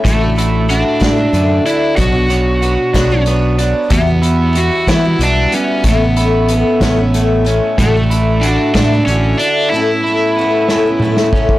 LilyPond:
<<
  \new Staff \with { instrumentName = "Electric slide guitar" } { \time 6/8 \key d \major \tempo 4. = 62 a4 d'4. e'8 | fis'2 r4 | b4 fis'8 e'8 d'8 cis'8 | b2~ b8 r8 |
a4 d'8 d'8 cis'8 d'8 | e'2~ e'8 r8 | }
  \new Staff \with { instrumentName = "Twelve-string acoustic guitar" } { \time 6/8 \key d \major <a, d d' e' fis'>16 <d' e' fis'>16 <d d' e' fis'>8 <d d' e' fis'>8 <a, d d' e' fis'>16 <d' e' fis'>16 <d d' e' fis'>8 <d d' e' fis'>8 | <b, fis b d' fis' cis''>16 <b d' fis' cis''>16 <b d' fis' cis''>8 <b d' fis' cis''>8 <b, fis b d' fis' cis''>16 <b d' fis' cis''>16 <b d' fis' cis''>8 <b d' fis' cis''>8 | <e, e g b e' fis'>16 <g b e' fis'>16 <g b e' fis'>8 <g b e' fis'>8 <e, e g b e' fis'>16 <g b e' fis'>16 <g b e' fis'>8 <g b e' fis'>8 | <a, a b cis' e'>16 <b cis' e'>16 <a b cis' e'>8 <a b cis' e'>8 <a, a b cis' e'>16 <b cis' e'>16 <a b cis' e'>8 <a b cis' e'>8 |
<a, d e d' e' fis'>16 <d d' e' fis'>16 <d d' e' fis'>8 <d d' e' fis'>8 <a, d e d' e' fis'>16 <d d' e' fis'>16 <d e' fis'>8 <d d' e' fis'>8 | <a, a b cis' e'>16 <b cis' e'>16 <a b cis' e'>8 <a b cis' e'>8 <a, a b cis' e'>16 <b cis' e'>16 <a b cis' e'>8 <a b cis' e'>8 | }
  \new Staff \with { instrumentName = "Clean electric guitar" } { \time 6/8 \key d \major a,8 e'8 fis'8 d'8 d8 d'8 | b,8 cis''8 fis'8 d'8 b8 d'8 | e,8 e'8 fis'8 b8 g8 b8 | a,8 e'8 b8 cis'8 a8 cis'8 |
a,8 e'8 fis'8 d'8 d8 d'8 | a,8 e'8 b8 cis'8 a8 cis'8 | }
  \new Staff \with { instrumentName = "Fingered electric bass" } { \clef bass \time 6/8 \key d \major a,,4. a,8 fis,8 r8 | b,,4. b,,4. | e,4. e8 b,,8 r8 | a,,4. a,,4. |
a,,4. a,8 a,,8 r8 | r2. | }
  \new DrumStaff \with { instrumentName = "Drums" } \drummode { \time 6/8 <hh bd>8 hh8 hh8 <hh bd sn>8 hh8 hh8 | <hh bd>8 hh8 hh8 <hh bd sn>8 hh8 hh8 | <hh bd>8 hh8 hh8 <hh bd sn>8 hh8 hh8 | <hh bd>8 hh8 hh8 <hh bd sn>8 hh8 hh8 |
<hh bd>8 hh8 hh8 <hh bd sn>8 hh8 hh8 | r4. sn8 toml16 sn16 bd16 bd16 | }
>>